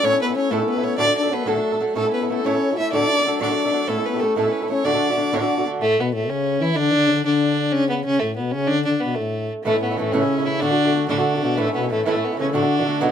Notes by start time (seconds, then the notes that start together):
0.03 A2 A3 C#4 E4 A4 C#5
0.12 C#4 E4 A4
0.22 B3 B4
0.28 C#4 E4 A4
0.35 A3 C#4 E4 A4 C#5
0.51 A2 A3 C#4 E4 A4
0.59 C#4 E4 A4
0.68 B3 B4
0.76 C#4 E4 A4
0.83 A3 C#4 E4 A4 C#5
0.98 D2 A2 F#3 A3 D4 A4 D5
1.07 F#3 A3 D4 A4
1.17 D4 D5
1.23 F#3 A3 D4 A4
1.29 F#3 A3 B3 C#4 D4 A4 B4
1.46 D2 A2 F#3 A3 D4 A4
1.55 F#3 A3 D4 A4
1.72 F#3 A3 D4 A4
1.80 F#3 A3 D4 A4
1.94 A2 A3 C#4 E4 A4
2.05 C#4 E4 A4
2.13 B3 B4
2.22 C#4 E4 A4
2.30 A3 C#4 E4 A4
2.43 A2 A3 C#4 E4 A4 C#5
2.54 C#4 E4 A4
2.71 C#4 E4 F#4 A4
2.78 A3 C#4 E4 A4 E5
2.92 D2 A2 F#3 A3 D4 A4 D5
3.01 F#3 A3 D4 A4
3.07 D4 E4
3.18 F#3 A3 D4 A4
3.23 F#3 C#4 D4
3.27 A3 A4
3.39 D2 A2 F#3 A3 D4 A4 D5
3.50 F#3 A3 D4 A4
3.65 F#3 A3 D4 A4
3.72 F#3 A3 D4 A4
3.88 A2 A3 C#4 E4 A4
3.98 C#4 E4 A4
4.05 B3 B4
4.14 C#4 E4 G4 A4
4.20 A3 C#4 E4 A4
4.24 A4
4.36 A2 A3 C#4 E4 A4
4.45 C#4 E4 A4
4.52 B4
4.62 C#4 E4 A4
4.69 A3 C#4 E4 A4 C#5
4.84 D2 A2 D3 A3 D4 F#4 D5
4.93 D3 A3 D4 F#4
5.10 D3 A3 D4 F#4 D5 E5
5.17 D3 A3 D4 F#4
5.32 D2 A2 D3 A3 D4 F#4 C#5
5.39 A3 D4 F#4 D5
5.43 D3 D4
5.57 D3 A3 D4 F#4
5.64 D3 A3 D4 F#4
5.81 A2 A3
5.99 B2 B3
6.13 A2 A3
6.29 C#3 C#4
6.61 E3 E4
6.76 D3 D4
6.91 D3 E3
7.07 C#3 D3
7.25 D3 D4
7.72 C#3 C#4
7.89 B3
8.05 C#3 C#4
8.19 A2 A3
8.36 B2 B3
8.51 C#3 C#4
8.67 D3 D4
8.85 D3 D4
9.00 B2 B3
9.14 A3
9.19 A2
9.64 A2 E3 A3 C#4 E4
9.74 A3 C#4 E4
9.82 B3
9.91 A3 C#4 E4
9.97 A2 E3 A3 C#4 E4
10.12 A2 C#3 E3 A3 C#4 E4
10.21 A3 C#4 E4
10.38 A3 C#4 E4
10.45 E3 A3 C#4 E4
10.60 D2 A2 D3 A3 D4 F#4
10.70 D3 A3 D4 F#4
10.85 D3 A3 D4 F#4
10.94 D3 A3 D4 F#4
11.08 D2 A2 D3 A3 D4 F#4
11.18 D3 A3 D4 F#4
11.35 D3 A3 D4 F#4
11.42 B2 D3 A3 D4 F#4
11.56 A2 E3 A3 C#4 E4
11.67 A3 C#4 E4
11.74 B2 B3
11.83 A3 C#4 E4
11.90 A2 E3 A3 C#4 E4
12.05 A2 E3 A3 C#4 E4
12.14 A3 C#4 E4
12.24 B3
12.32 A3 C#4 E4
12.39 C#3 E3 A3 C#4 E4
12.52 D2 A2 D3 A3 D4 F#4
12.62 D3 A3 D4 F#4
12.78 D3 E3 A3 D4 F#4
12.83 D3
12.87 A3 D4 F#4
13.00 B2 F#3 A3 B3 D#4
13.05 C#3